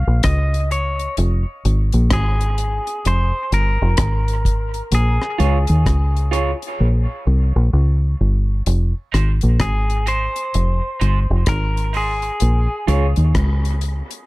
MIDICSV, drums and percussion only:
0, 0, Header, 1, 2, 480
1, 0, Start_track
1, 0, Key_signature, -4, "minor"
1, 0, Tempo, 936037
1, 603, Time_signature, 4, 2, 24, 8
1, 7316, End_track
2, 0, Start_track
2, 0, Title_t, "Drums"
2, 118, Note_on_c, 9, 42, 108
2, 122, Note_on_c, 9, 37, 123
2, 125, Note_on_c, 9, 36, 116
2, 170, Note_off_c, 9, 42, 0
2, 173, Note_off_c, 9, 37, 0
2, 176, Note_off_c, 9, 36, 0
2, 277, Note_on_c, 9, 42, 54
2, 328, Note_off_c, 9, 42, 0
2, 366, Note_on_c, 9, 42, 62
2, 417, Note_off_c, 9, 42, 0
2, 510, Note_on_c, 9, 42, 48
2, 561, Note_off_c, 9, 42, 0
2, 601, Note_on_c, 9, 42, 78
2, 652, Note_off_c, 9, 42, 0
2, 847, Note_on_c, 9, 42, 76
2, 898, Note_off_c, 9, 42, 0
2, 987, Note_on_c, 9, 42, 56
2, 1038, Note_off_c, 9, 42, 0
2, 1079, Note_on_c, 9, 37, 105
2, 1080, Note_on_c, 9, 42, 86
2, 1084, Note_on_c, 9, 36, 108
2, 1131, Note_off_c, 9, 37, 0
2, 1131, Note_off_c, 9, 42, 0
2, 1136, Note_off_c, 9, 36, 0
2, 1234, Note_on_c, 9, 42, 54
2, 1285, Note_off_c, 9, 42, 0
2, 1323, Note_on_c, 9, 42, 77
2, 1374, Note_off_c, 9, 42, 0
2, 1472, Note_on_c, 9, 42, 59
2, 1523, Note_off_c, 9, 42, 0
2, 1565, Note_on_c, 9, 42, 90
2, 1617, Note_off_c, 9, 42, 0
2, 1806, Note_on_c, 9, 42, 74
2, 1858, Note_off_c, 9, 42, 0
2, 2037, Note_on_c, 9, 42, 109
2, 2040, Note_on_c, 9, 37, 110
2, 2043, Note_on_c, 9, 36, 116
2, 2088, Note_off_c, 9, 42, 0
2, 2091, Note_off_c, 9, 37, 0
2, 2094, Note_off_c, 9, 36, 0
2, 2195, Note_on_c, 9, 42, 53
2, 2246, Note_off_c, 9, 42, 0
2, 2283, Note_on_c, 9, 36, 71
2, 2286, Note_on_c, 9, 42, 67
2, 2334, Note_off_c, 9, 36, 0
2, 2337, Note_off_c, 9, 42, 0
2, 2430, Note_on_c, 9, 42, 44
2, 2482, Note_off_c, 9, 42, 0
2, 2521, Note_on_c, 9, 42, 91
2, 2572, Note_off_c, 9, 42, 0
2, 2675, Note_on_c, 9, 37, 53
2, 2726, Note_off_c, 9, 37, 0
2, 2768, Note_on_c, 9, 42, 72
2, 2819, Note_off_c, 9, 42, 0
2, 2909, Note_on_c, 9, 42, 56
2, 2960, Note_off_c, 9, 42, 0
2, 3006, Note_on_c, 9, 36, 108
2, 3007, Note_on_c, 9, 37, 104
2, 3008, Note_on_c, 9, 42, 89
2, 3057, Note_off_c, 9, 36, 0
2, 3059, Note_off_c, 9, 37, 0
2, 3059, Note_off_c, 9, 42, 0
2, 3162, Note_on_c, 9, 42, 52
2, 3213, Note_off_c, 9, 42, 0
2, 3246, Note_on_c, 9, 42, 76
2, 3297, Note_off_c, 9, 42, 0
2, 3397, Note_on_c, 9, 42, 58
2, 3448, Note_off_c, 9, 42, 0
2, 4442, Note_on_c, 9, 42, 85
2, 4494, Note_off_c, 9, 42, 0
2, 4687, Note_on_c, 9, 37, 66
2, 4689, Note_on_c, 9, 42, 70
2, 4738, Note_off_c, 9, 37, 0
2, 4740, Note_off_c, 9, 42, 0
2, 4826, Note_on_c, 9, 42, 53
2, 4877, Note_off_c, 9, 42, 0
2, 4921, Note_on_c, 9, 37, 107
2, 4921, Note_on_c, 9, 42, 93
2, 4923, Note_on_c, 9, 36, 112
2, 4972, Note_off_c, 9, 37, 0
2, 4973, Note_off_c, 9, 42, 0
2, 4975, Note_off_c, 9, 36, 0
2, 5075, Note_on_c, 9, 42, 59
2, 5127, Note_off_c, 9, 42, 0
2, 5163, Note_on_c, 9, 42, 81
2, 5214, Note_off_c, 9, 42, 0
2, 5312, Note_on_c, 9, 42, 62
2, 5363, Note_off_c, 9, 42, 0
2, 5405, Note_on_c, 9, 42, 80
2, 5457, Note_off_c, 9, 42, 0
2, 5647, Note_on_c, 9, 42, 70
2, 5698, Note_off_c, 9, 42, 0
2, 5878, Note_on_c, 9, 42, 103
2, 5881, Note_on_c, 9, 37, 123
2, 5882, Note_on_c, 9, 36, 113
2, 5929, Note_off_c, 9, 42, 0
2, 5933, Note_off_c, 9, 36, 0
2, 5933, Note_off_c, 9, 37, 0
2, 6037, Note_on_c, 9, 42, 50
2, 6088, Note_off_c, 9, 42, 0
2, 6121, Note_on_c, 9, 46, 43
2, 6173, Note_off_c, 9, 46, 0
2, 6267, Note_on_c, 9, 42, 47
2, 6319, Note_off_c, 9, 42, 0
2, 6359, Note_on_c, 9, 42, 86
2, 6410, Note_off_c, 9, 42, 0
2, 6606, Note_on_c, 9, 42, 69
2, 6657, Note_off_c, 9, 42, 0
2, 6749, Note_on_c, 9, 42, 56
2, 6801, Note_off_c, 9, 42, 0
2, 6845, Note_on_c, 9, 36, 104
2, 6845, Note_on_c, 9, 37, 113
2, 6846, Note_on_c, 9, 42, 88
2, 6896, Note_off_c, 9, 36, 0
2, 6897, Note_off_c, 9, 37, 0
2, 6897, Note_off_c, 9, 42, 0
2, 7000, Note_on_c, 9, 42, 59
2, 7051, Note_off_c, 9, 42, 0
2, 7083, Note_on_c, 9, 42, 77
2, 7134, Note_off_c, 9, 42, 0
2, 7234, Note_on_c, 9, 42, 62
2, 7285, Note_off_c, 9, 42, 0
2, 7316, End_track
0, 0, End_of_file